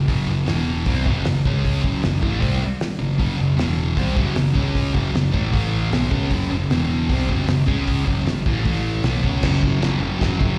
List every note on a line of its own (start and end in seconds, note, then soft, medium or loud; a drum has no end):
0.08 0.27 F#1 loud
0.08 0.26 F#2 loud
0.08 0.26 C#3 loud
0.08 0.27 F#3 loud
0.08 kick loud
0.08 open hi-hat medium
0.27 0.47 F#1 medium
0.27 0.43 F#2 medium
0.27 0.43 C#3 medium
0.45 0.84 E1 medium
0.45 0.84 E2 medium
0.45 0.85 B2 medium
0.45 0.85 E3 loud
0.45 snare loud
0.45 open hi-hat medium
0.86 1.05 C2 medium
0.86 1.05 C3 loud
0.86 1.05 G3 loud
0.86 1.05 C4 loud
0.86 kick loud
0.86 open hi-hat medium
1.05 1.24 F#1 loud
1.05 1.24 F#2 medium
1.05 1.25 C#3 loud
1.05 1.25 F#3 medium
1.05 kick loud
1.25 1.44 F#1 medium
1.25 1.41 F#2 medium
1.25 1.42 C#3 medium
1.25 snare loud
1.25 open hi-hat medium
1.45 1.81 C#2 medium
1.45 1.81 C#3 medium
1.45 1.83 G#3 medium
1.45 1.84 C#4 loud
1.45 kick loud
1.65 kick loud
1.65 open hi-hat medium
1.82 2.02 F#1 medium
1.82 2.01 F#2 medium
1.82 2.02 C#3 medium
1.82 2.02 F#3 medium
1.82 kick loud
2.03 2.21 F#1 medium
2.03 2.19 F#2 medium
2.03 2.19 C#3 medium
2.03 snare loud
2.03 open hi-hat medium
2.21 2.40 A1 medium
2.21 2.39 A2 medium
2.21 2.40 E3 loud
2.21 2.40 A3 loud
2.21 kick loud
2.40 2.60 C2 medium
2.40 2.60 C3 medium
2.40 2.60 G3 medium
2.40 2.60 C4 loud
2.40 kick loud
2.40 open hi-hat medium
2.80 snare loud
2.80 open hi-hat medium
2.98 3.18 F#1 medium
2.98 3.15 F#2 medium
2.98 3.15 C#3 medium
3.18 3.37 F#1 medium
3.18 3.36 F#2 loud
3.18 3.37 C#3 loud
3.18 3.38 F#3 loud
3.18 kick loud
3.18 open hi-hat medium
3.38 3.56 F#1 medium
3.38 3.54 F#2 medium
3.38 3.54 C#3 medium
3.57 3.94 E1 medium
3.57 3.96 E2 medium
3.57 3.95 B2 medium
3.57 3.96 E3 medium
3.57 snare loud
3.57 open hi-hat medium
3.95 4.15 C2 medium
3.95 4.15 C3 loud
3.95 4.16 G3 loud
3.95 4.16 C4 loud
3.95 kick loud
3.95 open hi-hat medium
4.15 4.34 F#1 loud
4.15 4.34 F#2 medium
4.15 4.34 C#3 medium
4.15 4.35 F#3 loud
4.15 kick loud
4.35 4.54 F#1 medium
4.35 4.51 F#2 medium
4.35 4.51 C#3 medium
4.35 snare loud
4.35 open hi-hat medium
4.54 4.92 C#2 loud
4.54 4.93 C#3 medium
4.54 4.93 G#3 loud
4.54 4.94 C#4 loud
4.54 kick loud
4.75 kick loud
4.75 open hi-hat medium
4.93 5.13 F#1 medium
4.93 5.11 F#2 medium
4.93 5.11 C#3 loud
4.93 5.13 F#3 loud
4.93 kick loud
5.12 5.33 F#1 medium
5.12 5.29 F#2 medium
5.12 5.29 C#3 medium
5.12 snare loud
5.12 open hi-hat medium
5.31 5.52 A1 medium
5.31 5.51 A2 medium
5.31 5.52 E3 loud
5.31 5.51 A3 loud
5.31 kick loud
5.52 5.90 A1 loud
5.52 5.90 A2 medium
5.52 5.91 E3 loud
5.52 5.91 A3 loud
5.52 kick loud
5.52 open hi-hat medium
5.91 6.11 B1 loud
5.91 6.10 B2 loud
5.91 6.10 F#3 loud
5.91 6.11 B3 loud
5.91 snare loud
5.91 open hi-hat medium
6.10 6.30 C#2 medium
6.10 6.30 C#3 medium
6.10 6.30 G#3 loud
6.10 6.30 C#4 loud
6.10 kick loud
6.31 6.50 F#1 medium
6.31 6.48 F#2 loud
6.31 6.49 C#3 loud
6.31 6.50 F#3 loud
6.31 kick loud
6.31 open hi-hat medium
6.49 6.69 F#1 medium
6.49 6.66 F#2 medium
6.49 6.66 C#3 medium
6.70 7.07 E1 medium
6.70 7.09 E2 medium
6.70 7.09 B2 medium
6.70 7.10 E3 medium
6.70 snare loud
6.70 open hi-hat medium
7.09 7.28 C2 medium
7.09 7.28 C3 medium
7.09 7.29 G3 medium
7.09 7.29 C4 loud
7.09 kick loud
7.09 open hi-hat medium
7.28 7.47 F#1 medium
7.28 7.46 F#2 medium
7.28 7.46 C#3 medium
7.28 7.48 F#3 medium
7.28 kick loud
7.47 7.66 F#1 medium
7.47 7.64 F#2 medium
7.47 7.64 C#3 medium
7.47 snare loud
7.47 open hi-hat medium
7.66 8.04 C#2 medium
7.66 8.04 C#3 medium
7.66 8.05 G#3 medium
7.66 8.06 C#4 loud
7.66 kick loud
7.88 kick loud
7.88 open hi-hat medium
8.05 8.24 F#1 medium
8.05 8.24 F#2 medium
8.05 8.25 C#3 medium
8.05 8.25 F#3 loud
8.05 kick medium
8.24 8.43 F#1 medium
8.24 8.41 F#2 medium
8.24 8.42 C#3 medium
8.24 snare medium
8.24 open hi-hat medium
8.46 8.64 A1 loud
8.46 8.63 A2 medium
8.46 8.63 E3 medium
8.46 8.65 A3 loud
8.46 kick loud
8.64 9.01 A1 medium
8.64 9.03 A2 medium
8.64 9.03 E3 medium
8.64 9.04 A3 loud
8.64 kick loud
8.64 open hi-hat medium
9.03 9.21 B1 medium
9.03 9.23 B2 medium
9.03 9.24 F#3 medium
9.03 9.24 B3 loud
9.03 snare loud
9.03 open hi-hat medium
9.23 9.42 C#2 medium
9.23 9.42 C#3 loud
9.23 9.43 G#3 medium
9.23 9.43 C#4 loud
9.23 kick loud
9.43 9.69 F#1 medium
9.43 9.62 F#2 loud
9.43 9.63 C#3 loud
9.43 9.64 F#3 loud
9.43 kick loud
9.43 snare loud
9.43 crash loud
9.43 crash medium
9.62 9.80 F#2 medium
9.62 9.80 C#3 medium
9.62 9.81 F#3 loud
9.62 kick medium
9.80 9.95 F#1 medium
9.80 9.98 F#2 medium
9.80 9.99 C#3 medium
9.80 10.01 F#3 loud
9.80 snare loud
9.80 crash medium
9.99 10.13 F#1 medium
9.99 10.18 F#2 medium
9.99 10.20 C#3 medium
9.99 10.21 F#3 loud
10.20 10.34 F#1 medium
10.20 10.39 F#2 loud
10.20 10.39 C#3 loud
10.20 10.41 F#3 loud
10.20 kick loud
10.20 snare loud
10.20 crash medium
10.40 10.53 F#1 medium
10.40 10.56 F#2 medium
10.40 10.57 C#3 medium
10.40 10.59 F#3 loud
10.40 kick loud